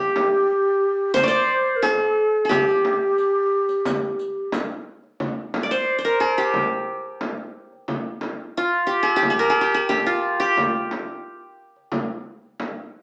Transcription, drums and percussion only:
0.16 darbuka tek medium
0.16 frame drum medium
0.50 darbuka ka soft
1.16 riq medium
1.16 frame drum medium
1.16 darbuka dum medium
1.50 darbuka ka soft
1.83 riq medium
1.83 darbuka tek medium
1.83 frame drum medium
2.51 riq medium
2.51 darbuka dum medium
2.51 frame drum medium
2.68 riq soft
2.84 darbuka tek medium
2.84 frame drum medium
3.18 riq soft
3.18 darbuka ka soft
3.69 riq soft
3.69 darbuka ka soft
3.85 riq medium
3.85 frame drum medium
3.85 darbuka dum medium
4.19 riq soft
4.19 darbuka ka soft
4.52 riq soft
4.52 darbuka tek medium
4.52 frame drum medium
5.04 darbuka ka soft
5.20 frame drum medium
5.20 darbuka dum medium
5.54 darbuka tek medium
5.54 frame drum medium
6.54 frame drum medium
6.54 darbuka dum medium
6.87 darbuka ka soft
7.21 darbuka tek medium
7.21 frame drum medium
7.72 darbuka ka soft
7.88 frame drum medium
7.88 darbuka dum medium
8.21 darbuka tek medium
8.21 frame drum medium
9.07 darbuka ka soft
9.23 frame drum medium
9.23 darbuka dum medium
9.57 darbuka ka soft
9.90 darbuka tek medium
9.90 frame drum medium
10.42 darbuka ka soft
10.57 frame drum medium
10.57 darbuka dum medium
10.91 darbuka tek medium
10.91 frame drum medium
11.76 darbuka ka soft
11.92 frame drum medium
11.92 darbuka dum medium
12.26 darbuka ka soft
12.60 darbuka tek medium
12.60 frame drum medium

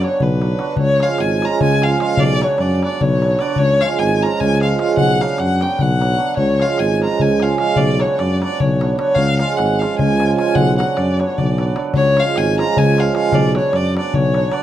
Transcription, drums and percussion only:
0.01 darbuka tek medium
0.10 darbuka tek soft
0.20 darbuka dum medium
0.30 darbuka tek soft
0.41 darbuka tek medium
0.51 darbuka tek soft
0.59 darbuka tek medium
0.68 darbuka tek soft
0.76 darbuka dum medium
1.00 darbuka tek medium
1.10 darbuka tek soft
1.18 darbuka tek medium
1.42 darbuka tek medium
1.61 darbuka dum medium
1.82 darbuka tek medium
1.91 darbuka tek soft
2.00 darbuka tek medium
2.17 darbuka dum loud
2.41 darbuka tek medium
2.50 darbuka tek soft
2.58 darbuka tek medium
2.83 darbuka tek medium
3.01 darbuka dum medium
3.22 darbuka tek medium
3.30 darbuka tek soft
3.39 darbuka tek medium
3.56 darbuka dum medium
3.81 darbuka tek medium
3.90 darbuka tek soft
4.00 darbuka tek medium
4.23 darbuka tek medium
4.41 darbuka dum medium
4.61 darbuka tek medium
4.70 darbuka tek soft
4.79 darbuka tek medium
4.97 darbuka dum medium
5.10 darbuka tek soft
5.21 darbuka tek medium
5.30 darbuka tek soft
5.38 darbuka tek medium
5.61 darbuka tek medium
5.70 darbuka tek soft
5.79 darbuka dum medium
5.90 darbuka tek soft
6.01 darbuka tek medium
6.10 darbuka tek soft
6.28 darbuka tek soft
6.37 darbuka dum medium
6.60 darbuka tek medium
6.69 darbuka tek soft
6.78 darbuka tek medium
7.02 darbuka tek medium
7.20 darbuka dum medium
7.40 darbuka tek medium
7.49 darbuka tek soft
7.58 darbuka tek medium
7.76 darbuka dum medium
8.00 darbuka tek medium
8.10 darbuka tek soft
8.19 darbuka tek medium
8.42 darbuka tek medium
8.60 darbuka dum medium
8.81 darbuka tek medium
8.91 darbuka tek soft
8.99 darbuka tek medium
9.16 darbuka dum medium
9.39 darbuka tek medium
9.58 darbuka tek medium
9.82 darbuka tek medium
9.99 darbuka dum medium
10.20 darbuka tek medium
10.30 darbuka tek soft
10.39 darbuka tek medium
10.55 darbuka dum loud
10.68 darbuka tek soft
10.80 darbuka tek medium
10.88 darbuka tek soft
10.97 darbuka tek medium
11.08 darbuka tek soft
11.20 darbuka tek medium
11.29 darbuka tek soft
11.38 darbuka dum medium
11.48 darbuka tek soft
11.58 darbuka tek medium
11.76 darbuka tek medium
11.85 darbuka tek soft
11.94 darbuka dum loud
12.17 darbuka tek medium
12.36 darbuka tek medium
12.59 darbuka tek medium
12.77 darbuka dum loud
12.98 darbuka tek medium
13.07 darbuka tek soft
13.15 darbuka tek medium
13.32 darbuka dum loud
13.55 darbuka tek medium
13.65 darbuka tek soft
13.73 darbuka tek medium
13.97 darbuka tek medium
14.14 darbuka dum medium
14.34 darbuka tek medium
14.43 darbuka tek soft
14.52 darbuka tek medium

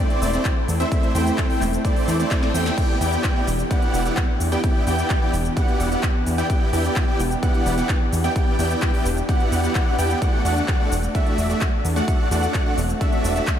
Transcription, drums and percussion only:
0.10 closed hi-hat soft
0.22 open hi-hat loud
0.22 shaker medium
0.33 closed hi-hat medium
0.33 shaker soft
0.45 kick loud
0.45 clap loud
0.45 closed hi-hat medium
0.45 shaker soft
0.68 open hi-hat loud
0.68 shaker medium
0.80 closed hi-hat medium
0.80 shaker soft
0.92 kick loud
0.92 closed hi-hat medium
0.92 shaker soft
1.03 closed hi-hat soft
1.15 open hi-hat loud
1.15 shaker medium
1.27 closed hi-hat medium
1.27 shaker soft
1.38 kick loud
1.38 clap loud
1.38 closed hi-hat medium
1.38 shaker soft
1.50 open hi-hat medium
1.61 clap soft
1.61 open hi-hat loud
1.61 shaker medium
1.73 closed hi-hat medium
1.73 shaker soft
1.85 kick loud
1.85 closed hi-hat medium
1.85 shaker soft
1.96 open hi-hat medium
2.08 open hi-hat loud
2.08 shaker medium
2.20 closed hi-hat medium
2.20 shaker soft
2.31 kick loud
2.31 snare medium
2.31 clap loud
2.31 closed hi-hat medium
2.31 shaker soft
2.43 snare medium
2.54 open hi-hat loud
2.54 shaker medium
2.66 snare medium
2.66 closed hi-hat medium
2.66 shaker soft
2.78 kick loud
2.78 closed hi-hat medium
2.78 crash medium
2.78 shaker soft
3.01 open hi-hat loud
3.01 shaker medium
3.13 closed hi-hat medium
3.13 shaker soft
3.24 kick loud
3.24 clap loud
3.24 closed hi-hat medium
3.24 shaker soft
3.47 open hi-hat loud
3.47 shaker medium
3.59 closed hi-hat medium
3.59 shaker soft
3.71 kick loud
3.71 closed hi-hat medium
3.71 shaker soft
3.82 closed hi-hat soft
3.94 open hi-hat loud
3.94 shaker medium
4.05 closed hi-hat medium
4.05 shaker soft
4.17 kick loud
4.17 clap loud
4.17 closed hi-hat medium
4.17 shaker soft
4.40 open hi-hat loud
4.40 shaker medium
4.52 closed hi-hat medium
4.52 shaker soft
4.64 kick loud
4.64 closed hi-hat medium
4.64 shaker soft
4.87 open hi-hat loud
4.87 shaker medium
4.98 closed hi-hat medium
4.98 shaker soft
5.10 kick loud
5.10 clap loud
5.10 closed hi-hat medium
5.10 shaker soft
5.33 open hi-hat loud
5.33 shaker medium
5.45 closed hi-hat medium
5.45 shaker soft
5.57 kick loud
5.57 closed hi-hat medium
5.57 shaker soft
5.68 closed hi-hat soft
5.80 open hi-hat loud
5.80 shaker medium
5.92 closed hi-hat medium
5.92 shaker soft
6.03 kick loud
6.03 clap loud
6.03 closed hi-hat medium
6.03 shaker soft
6.26 open hi-hat loud
6.26 shaker medium
6.38 closed hi-hat medium
6.38 shaker soft
6.50 kick loud
6.50 closed hi-hat medium
6.50 shaker soft
6.73 open hi-hat loud
6.73 shaker medium
6.85 closed hi-hat medium
6.85 shaker soft
6.96 kick loud
6.96 clap loud
6.96 closed hi-hat medium
6.96 shaker soft
7.20 open hi-hat loud
7.20 shaker medium
7.31 closed hi-hat soft
7.31 shaker soft
7.43 kick loud
7.43 closed hi-hat medium
7.43 shaker soft
7.54 closed hi-hat soft
7.66 open hi-hat loud
7.66 shaker medium
7.78 closed hi-hat medium
7.78 shaker soft
7.89 kick loud
7.89 clap loud
7.89 closed hi-hat medium
7.89 shaker soft
8.13 open hi-hat loud
8.13 shaker medium
8.24 closed hi-hat medium
8.24 shaker soft
8.36 kick loud
8.36 closed hi-hat medium
8.36 shaker soft
8.59 open hi-hat loud
8.59 shaker medium
8.71 closed hi-hat soft
8.71 shaker soft
8.82 kick loud
8.82 clap loud
8.82 closed hi-hat medium
8.82 shaker soft
8.94 open hi-hat medium
9.05 open hi-hat loud
9.05 shaker medium
9.17 closed hi-hat soft
9.17 shaker soft
9.29 kick loud
9.29 closed hi-hat medium
9.29 shaker soft
9.40 closed hi-hat soft
9.52 open hi-hat loud
9.52 shaker medium
9.64 closed hi-hat medium
9.64 shaker soft
9.75 kick loud
9.75 clap loud
9.75 closed hi-hat medium
9.75 shaker soft
9.98 open hi-hat loud
9.98 shaker medium
10.10 closed hi-hat medium
10.10 shaker soft
10.22 kick loud
10.22 closed hi-hat medium
10.22 shaker soft
10.45 open hi-hat loud
10.45 shaker medium
10.57 closed hi-hat medium
10.57 shaker soft
10.68 kick loud
10.68 clap loud
10.68 closed hi-hat medium
10.68 shaker soft
10.92 open hi-hat loud
10.92 shaker medium
11.03 closed hi-hat soft
11.03 shaker soft
11.15 kick loud
11.15 closed hi-hat medium
11.15 shaker soft
11.27 closed hi-hat soft
11.38 open hi-hat loud
11.38 shaker medium
11.50 closed hi-hat medium
11.50 shaker soft
11.61 kick loud
11.61 clap loud
11.61 closed hi-hat medium
11.61 shaker soft
11.85 open hi-hat loud
11.85 shaker medium
11.96 closed hi-hat medium
11.96 shaker soft
12.08 kick loud
12.08 closed hi-hat medium
12.08 shaker soft
12.31 open hi-hat loud
12.31 shaker medium
12.43 closed hi-hat medium
12.43 shaker soft
12.54 kick loud
12.54 clap loud
12.54 closed hi-hat medium
12.54 shaker soft
12.78 open hi-hat loud
12.78 shaker medium
12.89 closed hi-hat medium
12.89 shaker soft
13.01 kick loud
13.01 closed hi-hat medium
13.01 shaker soft
13.13 closed hi-hat soft
13.24 open hi-hat loud
13.24 shaker medium
13.36 closed hi-hat medium
13.36 shaker soft
13.47 kick loud
13.47 clap loud
13.47 closed hi-hat medium
13.47 shaker soft

